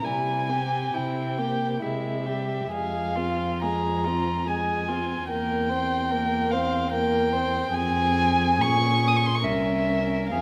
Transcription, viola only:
0, 0, Header, 1, 2, 480
1, 0, Start_track
1, 0, Tempo, 892857
1, 31, Time_signature, 3, 2, 24, 8
1, 1951, Tempo, 851064
1, 2431, Tempo, 814111
1, 4351, Tempo, 859599
1, 5848, End_track
2, 0, Start_track
2, 0, Title_t, "Viola"
2, 0, Program_c, 0, 41
2, 28, Note_on_c, 0, 55, 26
2, 264, Note_on_c, 0, 60, 28
2, 272, Note_off_c, 0, 55, 0
2, 501, Note_off_c, 0, 60, 0
2, 504, Note_on_c, 0, 60, 40
2, 741, Note_on_c, 0, 58, 37
2, 749, Note_off_c, 0, 60, 0
2, 982, Note_off_c, 0, 58, 0
2, 985, Note_on_c, 0, 56, 37
2, 1224, Note_on_c, 0, 55, 31
2, 1232, Note_off_c, 0, 56, 0
2, 1454, Note_off_c, 0, 55, 0
2, 1457, Note_on_c, 0, 56, 31
2, 1702, Note_on_c, 0, 60, 30
2, 1710, Note_off_c, 0, 56, 0
2, 1952, Note_on_c, 0, 56, 33
2, 1961, Note_off_c, 0, 60, 0
2, 2200, Note_on_c, 0, 60, 34
2, 2208, Note_off_c, 0, 56, 0
2, 2432, Note_off_c, 0, 60, 0
2, 2435, Note_on_c, 0, 56, 37
2, 2674, Note_on_c, 0, 60, 31
2, 2683, Note_off_c, 0, 56, 0
2, 2911, Note_off_c, 0, 60, 0
2, 2918, Note_on_c, 0, 58, 36
2, 3159, Note_on_c, 0, 60, 37
2, 3168, Note_off_c, 0, 58, 0
2, 3403, Note_on_c, 0, 58, 43
2, 3412, Note_off_c, 0, 60, 0
2, 3640, Note_on_c, 0, 60, 43
2, 3649, Note_off_c, 0, 58, 0
2, 3876, Note_off_c, 0, 60, 0
2, 3884, Note_on_c, 0, 58, 48
2, 4123, Note_on_c, 0, 60, 42
2, 4131, Note_off_c, 0, 58, 0
2, 4357, Note_off_c, 0, 60, 0
2, 4361, Note_on_c, 0, 60, 49
2, 4839, Note_on_c, 0, 61, 53
2, 4848, Note_off_c, 0, 60, 0
2, 5304, Note_off_c, 0, 61, 0
2, 5311, Note_on_c, 0, 61, 49
2, 5784, Note_off_c, 0, 61, 0
2, 5798, Note_on_c, 0, 60, 36
2, 5848, Note_off_c, 0, 60, 0
2, 5848, End_track
0, 0, End_of_file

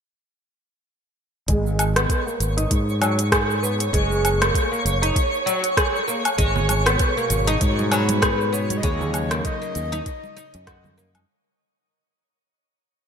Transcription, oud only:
0, 0, Header, 1, 2, 480
1, 0, Start_track
1, 0, Key_signature, 5, "minor"
1, 0, Tempo, 612245
1, 1168, Time_signature, 4, 2, 24, 8
1, 10254, End_track
2, 0, Start_track
2, 0, Title_t, "Oud"
2, 0, Program_c, 0, 24
2, 1163, Note_on_c, 0, 56, 81
2, 1527, Note_off_c, 0, 56, 0
2, 1537, Note_on_c, 0, 59, 73
2, 1767, Note_off_c, 0, 59, 0
2, 1778, Note_on_c, 0, 58, 69
2, 2007, Note_off_c, 0, 58, 0
2, 2016, Note_on_c, 0, 63, 94
2, 2119, Note_off_c, 0, 63, 0
2, 2362, Note_on_c, 0, 54, 89
2, 2494, Note_off_c, 0, 54, 0
2, 2603, Note_on_c, 0, 68, 78
2, 2734, Note_off_c, 0, 68, 0
2, 2843, Note_on_c, 0, 59, 71
2, 2974, Note_off_c, 0, 59, 0
2, 3086, Note_on_c, 0, 56, 80
2, 3449, Note_off_c, 0, 56, 0
2, 3461, Note_on_c, 0, 58, 73
2, 3689, Note_off_c, 0, 58, 0
2, 3698, Note_on_c, 0, 58, 76
2, 3927, Note_off_c, 0, 58, 0
2, 3938, Note_on_c, 0, 63, 96
2, 4040, Note_off_c, 0, 63, 0
2, 4280, Note_on_c, 0, 54, 91
2, 4412, Note_off_c, 0, 54, 0
2, 4525, Note_on_c, 0, 68, 76
2, 4655, Note_off_c, 0, 68, 0
2, 4765, Note_on_c, 0, 58, 73
2, 4895, Note_off_c, 0, 58, 0
2, 5002, Note_on_c, 0, 56, 77
2, 5367, Note_off_c, 0, 56, 0
2, 5377, Note_on_c, 0, 59, 78
2, 5607, Note_off_c, 0, 59, 0
2, 5623, Note_on_c, 0, 58, 74
2, 5850, Note_off_c, 0, 58, 0
2, 5859, Note_on_c, 0, 63, 100
2, 5961, Note_off_c, 0, 63, 0
2, 6207, Note_on_c, 0, 54, 94
2, 6336, Note_off_c, 0, 54, 0
2, 6444, Note_on_c, 0, 68, 76
2, 6575, Note_off_c, 0, 68, 0
2, 6684, Note_on_c, 0, 59, 70
2, 6814, Note_off_c, 0, 59, 0
2, 6924, Note_on_c, 0, 56, 82
2, 7288, Note_off_c, 0, 56, 0
2, 7298, Note_on_c, 0, 58, 75
2, 7527, Note_off_c, 0, 58, 0
2, 7539, Note_on_c, 0, 58, 77
2, 7768, Note_off_c, 0, 58, 0
2, 7779, Note_on_c, 0, 63, 98
2, 7880, Note_off_c, 0, 63, 0
2, 8127, Note_on_c, 0, 63, 100
2, 8249, Note_off_c, 0, 63, 0
2, 8365, Note_on_c, 0, 66, 83
2, 8495, Note_off_c, 0, 66, 0
2, 8605, Note_on_c, 0, 58, 72
2, 8684, Note_off_c, 0, 58, 0
2, 10254, End_track
0, 0, End_of_file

